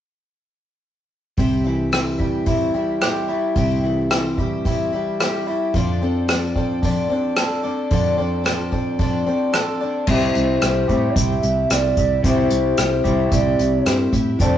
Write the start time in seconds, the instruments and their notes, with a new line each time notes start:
1.37 picked electric bass C2, clean electric guitar C3, twelve-string acoustic guitar C4 E4 G4 E5, kick, open hi-hat
1.64 clean electric guitar E3, twelve-string acoustic guitar E4 G4 E5
1.92 clean electric guitar E3, twelve-string acoustic guitar C4 E4 G4 E5, cross-stick, open hi-hat
2.18 clean electric guitar G3, twelve-string acoustic guitar E4 G4 E5, kick
2.46 twelve-string acoustic guitar C4 E4 G4 E5, kick, open hi-hat
2.74 clean electric guitar G3, twelve-string acoustic guitar E4 G4 E5
3.01 twelve-string acoustic guitar C4 E4 G4 E5, cross-stick, open hi-hat
3.28 twelve-string acoustic guitar E4 G4 E5
3.55 picked electric bass C2, clean electric guitar C3, twelve-string acoustic guitar C4 E4 G4 E5, kick, open hi-hat
3.83 clean electric guitar E3, twelve-string acoustic guitar E4 G4 E5
4.10 clean electric guitar E3, twelve-string acoustic guitar C4 E4 G4 E5, cross-stick, open hi-hat
4.38 clean electric guitar G3, twelve-string acoustic guitar E4 G4 E5, kick
4.65 twelve-string acoustic guitar C4 E4 G4 E5, kick, open hi-hat
4.93 clean electric guitar G3, twelve-string acoustic guitar E4 G4 E5
5.20 twelve-string acoustic guitar C4 E4 G4 E5, cross-stick, open hi-hat
5.47 twelve-string acoustic guitar E4 G4 E5
5.74 picked electric bass F2, twelve-string acoustic guitar D3 F3 C4 D4 A4 D5, kick, open hi-hat
6.02 twelve-string acoustic guitar C4 D4 A4 D5
6.28 clean electric guitar F3, twelve-string acoustic guitar C4 D4 A4 D5, cross-stick, open hi-hat
6.56 twelve-string acoustic guitar C4 D4 A4 D5, kick
6.83 twelve-string acoustic guitar D3 F3 C4 D4 A4 D5, kick, open hi-hat
7.10 twelve-string acoustic guitar C4 D4 A4 D5
7.36 twelve-string acoustic guitar C4 D4 A4 D5, cross-stick, open hi-hat
7.63 twelve-string acoustic guitar C4 D4 A4 D5
7.91 picked electric bass F2, twelve-string acoustic guitar D3 F3 C4 D4 A4 D5, kick, open hi-hat
8.17 twelve-string acoustic guitar C4 D4 A4 D5
8.44 clean electric guitar F3, twelve-string acoustic guitar C4 D4 A4 D5, cross-stick, open hi-hat
8.71 twelve-string acoustic guitar C4 D4 A4 D5, kick
8.99 twelve-string acoustic guitar D3 F3 C4 D4 A4 D5, kick, open hi-hat
9.26 twelve-string acoustic guitar C4 D4 A4 D5
9.52 twelve-string acoustic guitar C4 D4 A4 D5, cross-stick, open hi-hat
9.81 twelve-string acoustic guitar C4 D4 A4 D5
10.07 picked electric bass C2, clean electric guitar C3 G3, twelve-string acoustic guitar C4 E4 G4 E5, bansuri C5, kick, crash
10.35 picked electric bass C2, twelve-string acoustic guitar E4 G4 E5, closed hi-hat
10.61 picked electric bass C2, twelve-string acoustic guitar C4 E4 G4 E5, cross-stick, closed hi-hat
10.89 picked electric bass A2, clean electric guitar C3 G3 C4, twelve-string acoustic guitar E4 G4 E5, kick, closed hi-hat
11.16 picked electric bass C2, twelve-string acoustic guitar C4 E4 G4 E5, bansuri E5, kick, closed hi-hat
11.42 picked electric bass C2, twelve-string acoustic guitar E4 G4 E5, closed hi-hat
11.70 picked electric bass C2, twelve-string acoustic guitar C4 E4 G4 E5, bansuri D5, cross-stick, closed hi-hat
11.97 picked electric bass C2, twelve-string acoustic guitar E4 G4 E5, kick, closed hi-hat
12.23 picked electric bass C2, clean electric guitar C3 G3, twelve-string acoustic guitar C4 E4 G4 E5, bansuri C5, kick, closed hi-hat
12.50 picked electric bass C2, twelve-string acoustic guitar E4 G4 E5, closed hi-hat
12.77 picked electric bass C2, twelve-string acoustic guitar C4 E4 G4 E5, cross-stick, closed hi-hat
13.04 picked electric bass C2, clean electric guitar C3 G3 C4, twelve-string acoustic guitar E4 G4 E5, kick, closed hi-hat
13.32 picked electric bass C2, twelve-string acoustic guitar C4 E4 G4 E5, bansuri D5, kick, closed hi-hat
13.59 picked electric bass C2, twelve-string acoustic guitar E4 G4 E5, closed hi-hat
13.86 picked electric bass G2, twelve-string acoustic guitar C4 E4 G4 E5, cross-stick, closed hi-hat
14.12 picked electric bass A2, twelve-string acoustic guitar E4 G4 E5, kick, closed hi-hat
14.39 picked electric bass F1, twelve-string acoustic guitar D3 F3 C4 D4 A4 D5, bansuri C5, kick, closed hi-hat